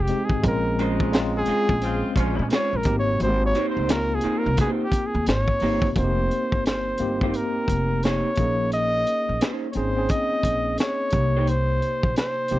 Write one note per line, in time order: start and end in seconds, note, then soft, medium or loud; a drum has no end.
0.00 0.09 G#3 medium
0.00 0.09 C4 medium
0.00 0.10 D#4 medium
0.00 0.26 G4 medium
0.00 0.46 G#4 medium
0.07 0.39 G#3 medium
0.07 0.39 C4 medium
0.07 0.39 D#4 medium
0.07 0.40 G4 medium
0.07 closed hi-hat medium
0.25 0.46 G#4 medium
0.29 0.42 G#1 medium
0.29 kick loud
0.43 1.44 A#1 loud
0.43 1.03 G#3 medium
0.43 1.03 C4 medium
0.43 1.03 C#4 medium
0.43 1.04 F4 medium
0.43 kick loud
0.43 closed hi-hat medium
0.48 0.89 A#4 loud
0.78 1.44 C#3 medium
0.78 1.44 G#3 medium
0.78 1.11 G#3 medium
0.78 1.11 C#4 medium
0.78 1.43 D#4 medium
0.78 1.12 F4 medium
0.78 1.12 C5 loud
0.78 closed hi-hat medium
1.00 kick loud
1.12 2.26 G#3 medium
1.12 2.26 C4 medium
1.12 2.27 C#4 medium
1.12 2.27 F4 loud
1.12 muted clean electric guitar stroke soft
1.12 snare loud
1.12 closed hi-hat medium
1.38 2.02 G#4 loud
1.46 1.72 G#3 medium
1.46 1.72 C#4 medium
1.46 1.72 F4 medium
1.46 1.72 C5 medium
1.46 muted upright bass stroke medium
1.46 closed hi-hat medium
1.69 2.01 A#1 medium
1.69 kick loud
1.82 2.10 C#3 medium
1.82 2.10 C4 medium
1.82 2.10 F4 loud
1.82 closed hi-hat medium
2.16 2.36 A#1 medium
2.16 2.44 G#2 medium
2.16 2.44 F3 medium
2.16 2.37 G#3 medium
2.16 2.44 C#4 medium
2.16 2.37 C#4 medium
2.16 2.37 F4 medium
2.16 2.37 C5 medium
2.16 kick medium
2.16 closed hi-hat medium
2.39 2.50 A#2 loud
2.50 2.75 G#3 medium
2.50 2.76 C#4 medium
2.50 2.76 F4 medium
2.50 2.76 C5 loud
2.50 2.78 C#5 loud
2.50 snare medium
2.50 closed hi-hat medium
2.73 2.85 A#1 medium
2.73 2.98 A#4 loud
2.83 3.17 G#1 loud
2.83 3.73 A#3 medium
2.83 3.73 C4 medium
2.83 3.73 D#4 medium
2.83 3.74 G4 medium
2.83 kick loud
2.83 closed hi-hat medium
2.99 3.20 C#5 loud
3.20 3.51 G#1 loud
3.20 3.43 C5 loud
3.20 closed hi-hat medium
3.46 3.66 C#5 loud
3.55 3.87 A#3 medium
3.55 3.88 D#4 medium
3.55 3.88 G4 medium
3.55 3.88 C5 loud
3.55 closed hi-hat medium
3.70 3.94 C5 medium
3.77 4.20 C#2 medium
3.88 5.02 A#3 medium
3.88 5.03 C4 medium
3.88 5.03 D#4 medium
3.88 5.03 F4 medium
3.88 4.16 A#4 loud
3.88 muted clean electric guitar stroke soft
3.88 snare loud
3.88 closed hi-hat medium
4.15 4.40 G#4 medium
4.21 4.48 A#3 medium
4.21 4.48 D#4 medium
4.21 4.48 G4 medium
4.21 4.49 C5 loud
4.21 muted upright bass stroke soft
4.21 closed hi-hat medium
4.38 4.60 A#4 loud
4.46 4.57 C2 loud
4.57 4.83 A#3 medium
4.57 4.83 D#4 medium
4.57 4.83 G4 medium
4.57 4.71 G#4 medium
4.57 4.84 C5 loud
4.57 kick loud
4.57 closed hi-hat medium
4.84 5.08 G4 medium
4.92 muted upright bass stroke soft
4.92 kick medium
4.92 closed hi-hat medium
5.07 5.28 G#4 medium
5.15 5.26 D#2 loud
5.26 5.47 G#1 medium
5.26 5.93 C#5 loud
5.26 muted clean electric guitar stroke soft
5.26 snare loud
5.26 closed hi-hat medium
5.48 kick medium
5.60 5.93 G1 medium
5.60 5.91 A#3 medium
5.60 5.86 A#3 medium
5.60 5.91 C4 medium
5.60 5.86 D#4 medium
5.60 5.92 D#4 medium
5.60 5.87 G4 medium
5.60 5.92 G4 medium
5.60 5.87 C5 loud
5.60 open hi-hat soft
5.82 kick medium
5.96 6.27 F1 loud
5.96 6.83 A#3 medium
5.96 6.84 C4 medium
5.96 6.84 D#4 medium
5.96 6.05 F#4 medium
5.96 6.62 C5 loud
5.96 kick loud
5.96 closed hi-hat medium
6.04 6.87 G4 medium
6.31 closed hi-hat soft
6.52 6.96 G1 medium
6.52 kick medium
6.66 7.26 C5 medium
6.66 snare loud
6.66 closed hi-hat medium
6.98 7.31 G1 medium
6.98 7.17 A#3 medium
6.98 7.17 C4 medium
6.98 7.18 D#4 medium
6.98 closed hi-hat medium
7.02 7.18 G4 medium
7.21 8.31 A#3 medium
7.21 7.35 A#3 soft
7.21 8.31 C4 medium
7.21 8.31 D#4 medium
7.21 7.35 D#4 medium
7.21 8.32 G4 medium
7.21 7.34 G4 medium
7.21 7.34 C5 medium
7.21 kick medium
7.31 7.38 C5 medium
7.31 closed hi-hat medium
7.36 8.06 A#4 medium
7.68 8.20 F1 medium
7.68 kick medium
7.68 closed hi-hat medium
8.03 8.28 A#3 medium
8.03 8.29 D#4 medium
8.03 8.29 G4 medium
8.03 8.29 C5 medium
8.03 8.73 C#5 loud
8.03 snare medium
8.03 closed hi-hat medium
8.35 9.03 A#1 medium
8.35 9.51 A#3 medium
8.35 9.51 C#4 medium
8.35 9.52 D#4 medium
8.35 kick medium
8.35 closed hi-hat medium
8.40 9.52 G#4 medium
8.72 9.47 D#5 loud
8.72 closed hi-hat medium
9.07 closed hi-hat medium
9.29 9.40 A#1 medium
9.41 9.66 C#4 medium
9.41 9.66 D#4 medium
9.41 9.66 G#4 medium
9.41 9.66 C5 medium
9.41 snare loud
9.41 closed hi-hat medium
9.72 10.07 G#1 medium
9.72 9.93 C4 medium
9.72 9.93 C#4 medium
9.72 10.12 C5 loud
9.72 9.77 C#5 medium
9.72 closed hi-hat medium
9.76 9.93 D#4 medium
9.76 9.94 G#4 medium
9.96 11.06 C4 medium
9.96 11.06 C#4 medium
9.96 11.07 D#4 medium
9.96 11.07 G#4 medium
10.09 10.79 D#5 loud
10.09 kick medium
10.09 closed hi-hat medium
10.43 10.75 A#1 medium
10.43 kick medium
10.43 closed hi-hat medium
10.78 11.50 C#5 medium
10.78 snare loud
10.78 closed hi-hat medium
11.10 11.78 C2 medium
11.10 12.27 C3 medium
11.10 12.26 A#3 medium
11.10 12.27 D#4 medium
11.10 kick loud
11.10 closed hi-hat medium
11.14 12.27 G4 medium
11.37 11.48 A#3 soft
11.37 11.48 D#4 medium
11.37 11.48 G4 medium
11.37 11.48 C5 medium
11.47 12.17 C5 loud
11.47 closed hi-hat medium
11.82 closed hi-hat medium
12.03 12.16 A#1 medium
12.03 kick medium
12.16 12.59 C5 loud
12.16 snare loud
12.16 closed hi-hat medium
12.48 12.59 C2 medium
12.48 12.59 A#3 medium
12.48 12.59 C4 medium
12.48 12.59 D#4 medium
12.48 closed hi-hat medium
12.52 12.59 G4 medium